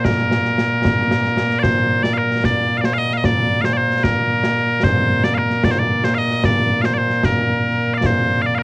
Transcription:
0.00 8.63 A#2 medium
0.00 8.63 A#3 medium
0.04 1.59 A#4 medium
0.04 concert bass drum medium
0.04 snare loud
0.18 snare soft
0.31 snare medium
0.45 snare soft
0.58 snare medium
0.85 concert bass drum medium
0.85 snare loud
1.11 snare medium
1.24 snare soft
1.37 snare medium
1.51 snare soft
1.59 2.03 C5 loud
1.59 1.63 D5 loud
1.64 concert bass drum medium
1.64 snare loud
2.03 2.13 D5 medium
2.03 snare medium
2.13 2.18 F5 medium
2.18 2.45 A#4 medium
2.31 snare soft
2.44 2.77 D5 loud
2.44 concert bass drum medium
2.44 snare medium
2.77 2.85 D5 medium
2.77 2.81 F5 medium
2.84 2.93 C5 medium
2.84 snare medium
2.93 2.98 F5 loud
2.98 3.13 D#5 loud
3.11 3.17 F5 medium
3.11 snare soft
3.17 3.25 D#5 medium
3.24 3.61 D5 loud
3.24 concert bass drum medium
3.24 snare loud
3.61 3.73 C5 medium
3.61 3.65 F5 medium
3.61 snare medium
3.73 4.03 C5 loud
3.73 3.77 D5 loud
3.91 snare soft
4.03 4.84 A#4 medium
4.03 concert bass drum medium
4.03 snare loud
4.44 snare medium
4.83 5.24 C5 loud
4.83 concert bass drum medium
4.83 snare loud
5.24 5.35 D5 medium
5.24 snare medium
5.35 5.65 A#4 medium
5.35 5.38 F5 medium
5.51 snare soft
5.64 5.71 D5 loud
5.64 concert bass drum medium
5.64 snare loud
5.71 5.79 C5 medium
5.79 6.05 D5 medium
6.04 6.15 C5 medium
6.04 snare medium
6.15 6.45 D#5 loud
6.15 6.18 F5 loud
6.31 snare soft
6.44 6.82 D5 loud
6.44 concert bass drum medium
6.44 snare loud
6.82 6.94 C5 medium
6.82 6.85 F5 medium
6.82 snare medium
6.94 6.98 D5 medium
6.98 7.25 C5 medium
7.10 snare soft
7.23 7.94 A#4 medium
7.23 concert bass drum medium
7.23 snare loud
7.94 8.06 D5 medium
7.94 7.97 F5 medium
8.04 8.42 C5 loud
8.04 concert bass drum medium
8.04 snare loud
8.42 8.46 F5 medium
8.46 8.55 D5 medium
8.55 8.63 A#4 medium
8.55 8.58 F5 medium

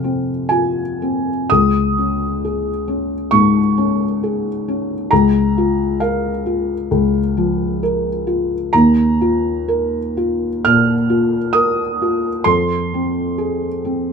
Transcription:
0.00 0.31 C3 soft
0.00 0.04 C4 soft
0.00 0.80 C4 soft
0.00 0.51 F4 soft
0.00 0.49 F5 medium
0.49 1.30 F4 medium
0.49 1.49 G#5 medium
1.02 1.50 C4 soft
1.50 3.28 C#2 medium
1.50 3.31 D#6 medium
1.98 2.69 C#4 soft
2.45 3.14 G#4 soft
2.88 3.58 C#4 medium
3.31 4.03 G#2 medium
3.31 5.11 C#6 medium
3.78 4.48 C#4 medium
4.23 4.94 G#4 medium
4.68 5.12 C#4 medium
5.11 6.88 C#2 medium
5.11 6.01 A#5 medium
5.58 6.28 F4 medium
6.00 6.73 A#4 soft
6.00 7.81 F5 medium
6.46 7.18 F4 soft
6.91 8.69 C#2 medium
7.37 8.09 F3 medium
7.83 8.55 A#4 medium
8.27 8.72 F4 medium
8.73 10.61 D#2 medium
8.73 10.64 A#5 medium
9.21 9.97 F4 medium
9.68 10.46 A#4 medium
10.17 10.93 F4 medium
10.65 11.37 A#2 medium
10.65 11.54 F6 loud
11.10 11.81 F4 medium
11.53 12.27 A#4 medium
11.53 12.45 D#6 loud
12.02 12.47 F4 medium
12.44 14.13 F2 medium
12.44 14.13 C6 loud
12.94 13.67 C4 medium
13.38 14.12 G#4 medium
13.85 14.13 C4 medium

